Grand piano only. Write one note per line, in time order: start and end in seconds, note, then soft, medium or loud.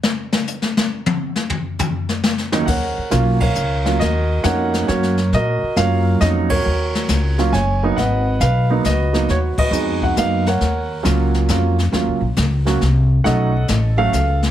2.52 2.66 D#2 medium
2.52 2.66 F#3 medium
2.52 2.66 A#3 medium
2.52 2.67 C#4 medium
2.52 2.67 D#4 medium
2.66 3.38 A#4 medium
2.66 3.37 C#5 medium
2.66 3.42 F#5 medium
3.10 3.38 F#3 medium
3.10 3.38 A#3 medium
3.10 3.38 C#4 medium
3.10 3.38 F4 medium
3.40 3.97 A#4 medium
3.40 3.96 C#5 medium
3.40 4.01 F5 medium
3.84 3.98 F#3 medium
3.84 3.98 A#3 soft
3.84 3.99 C#4 soft
3.84 3.99 F4 medium
4.00 4.42 F#4 medium
4.00 4.44 A#4 medium
4.00 4.45 D#5 medium
4.43 4.86 A#3 medium
4.43 4.87 C#4 medium
4.43 4.87 D#4 medium
4.43 4.86 F#4 medium
4.43 4.89 A#4 medium
4.43 4.87 C#5 medium
4.43 4.85 F#5 medium
4.87 5.14 F#3 medium
4.87 5.14 A#3 medium
4.87 5.15 C#4 medium
4.87 5.15 F#4 medium
4.87 5.34 A#4 medium
4.87 5.29 C#5 medium
5.34 6.04 F#4 medium
5.34 5.77 A#4 medium
5.34 5.79 D#5 medium
5.76 6.19 F#3 medium
5.76 6.19 A#3 medium
5.76 6.19 C#4 medium
5.76 6.20 F4 medium
5.76 6.47 A#4 medium
5.76 6.47 C#5 medium
5.76 6.22 F5 medium
6.21 6.47 F#3 medium
6.21 6.47 A#3 medium
6.21 6.48 C#4 medium
6.21 6.48 D#4 medium
6.21 6.27 D#5 medium
6.50 7.50 F#4 medium
6.50 7.49 A#4 medium
6.50 7.53 C#5 medium
7.38 7.51 F#3 medium
7.38 7.52 A#3 medium
7.38 7.52 C#4 medium
7.38 7.52 F4 medium
7.53 7.94 C#5 medium
7.53 7.98 G#5 medium
7.83 7.96 F#3 medium
7.83 7.96 A#3 medium
7.83 7.97 B3 medium
7.83 7.96 D#4 medium
7.97 8.41 B4 medium
7.97 8.67 D#5 medium
7.97 8.42 F#5 medium
8.41 8.86 B4 medium
8.41 8.86 F5 medium
8.70 8.83 F#3 medium
8.70 8.84 A#3 medium
8.70 8.84 B3 medium
8.70 8.84 D#4 medium
8.86 9.29 F#4 medium
8.86 9.55 B4 medium
8.86 9.31 D#5 medium
9.13 9.27 F#3 medium
9.13 9.27 A#3 medium
9.13 9.27 B3 medium
9.13 9.28 D#4 medium
9.30 9.58 F#4 medium
9.30 9.37 C#5 medium
9.59 9.70 F#4 medium
9.59 10.14 B4 medium
9.59 10.04 D#5 medium
9.71 10.15 G#3 soft
9.71 10.15 B3 soft
9.71 10.15 D#4 medium
9.71 10.15 F#4 medium
10.03 10.16 F#5 medium
10.16 10.43 F#3 soft
10.16 10.43 A#3 soft
10.16 10.44 B3 soft
10.16 10.44 D#4 medium
10.16 10.48 F5 medium
10.47 11.31 A#4 medium
10.47 11.31 C#5 medium
10.47 11.31 F#5 medium
11.03 11.47 F#3 medium
11.03 11.47 A#3 medium
11.03 11.47 C#4 medium
11.03 11.47 F4 medium
11.49 11.76 F#3 medium
11.49 11.76 A#3 medium
11.49 11.76 C#4 soft
11.49 11.76 F4 medium
11.92 12.19 F#3 soft
11.92 12.19 A#3 soft
11.92 12.19 C#4 soft
11.92 12.20 F4 medium
12.65 12.79 F#3 medium
12.65 12.80 A#3 medium
12.65 12.80 C#4 medium
12.65 12.80 F#4 medium
13.24 13.51 F#3 medium
13.24 13.51 A3 medium
13.24 13.51 C#4 medium
13.24 13.52 D#4 medium
13.24 13.95 A4 medium
13.24 13.95 D#5 medium
13.24 13.66 F#5 medium
13.97 14.11 F#3 medium
13.97 14.12 A3 medium
13.97 14.12 C#4 medium
13.97 14.12 F#4 medium
13.97 14.51 A4 medium
13.97 14.39 F5 loud